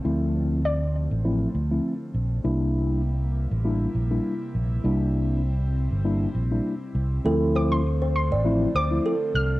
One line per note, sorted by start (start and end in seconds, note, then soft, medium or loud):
0.00 2.41 D3 medium
0.00 2.41 F3 medium
0.00 2.41 A3 medium
0.00 2.41 C4 medium
0.00 0.68 C5 loud
0.04 1.07 D2 loud
0.04 0.60 F3 medium
0.04 0.60 A3 medium
0.04 0.60 C4 medium
0.04 0.61 E4 medium
0.65 2.11 D5 medium
1.11 1.45 A1 medium
1.25 1.48 F3 medium
1.25 1.48 A3 medium
1.25 1.48 C4 medium
1.25 1.48 E4 medium
1.55 1.78 D2 medium
1.71 1.93 F3 medium
1.71 1.93 A3 medium
1.71 1.93 C4 medium
1.71 1.93 E4 medium
2.14 2.38 A#1 medium
2.44 3.47 C2 loud
2.44 7.21 C3 medium
2.44 3.00 G3 medium
2.44 7.21 G3 medium
2.44 3.00 A#3 medium
2.44 4.82 A#3 medium
2.44 3.00 D4 medium
2.44 7.21 E4 medium
2.44 3.00 E4 loud
3.51 3.85 A1 medium
3.64 3.88 G3 medium
3.64 3.88 A#3 medium
3.64 3.88 D4 medium
3.64 3.88 E4 medium
3.95 4.18 A#1 medium
4.11 4.33 G3 medium
4.11 4.33 A#3 medium
4.11 4.33 D4 medium
4.11 4.33 E4 medium
4.55 4.78 A#1 medium
4.84 5.87 C2 loud
4.84 5.40 G3 medium
4.84 5.40 A#3 medium
4.84 7.22 C4 medium
4.84 5.40 D4 medium
4.84 5.40 E4 loud
5.91 6.25 G1 medium
6.04 6.28 G3 medium
6.04 6.28 A#3 medium
6.04 6.28 D4 medium
6.04 6.28 E4 loud
6.35 6.58 A#1 medium
6.51 6.73 G3 medium
6.51 6.73 A#3 medium
6.51 6.73 D4 medium
6.51 6.73 E4 medium
6.95 7.18 C2 medium
7.24 8.33 D2 loud
7.24 9.60 D3 medium
7.24 7.80 F3 loud
7.24 9.60 F3 medium
7.24 7.80 A3 medium
7.24 9.60 A3 medium
7.24 9.60 C4 medium
7.24 7.80 C4 medium
7.24 7.81 E4 loud
7.24 7.37 A4 loud
7.55 7.67 C5 medium
7.55 7.71 D6 medium
7.72 8.12 C6 medium
8.02 8.11 C5 medium
8.16 8.71 C6 medium
8.31 8.65 A1 medium
8.31 8.41 D5 medium
8.44 8.68 F3 loud
8.44 8.68 A3 medium
8.44 8.68 C4 medium
8.44 8.68 E4 loud
8.75 8.98 D2 loud
8.75 8.87 C5 medium
8.75 9.31 D6 loud
8.91 9.13 F3 medium
8.91 9.13 A3 medium
8.91 9.13 C4 medium
8.91 9.13 E4 medium
9.06 9.27 A4 medium
9.35 9.58 C2 medium
9.35 9.60 F6 loud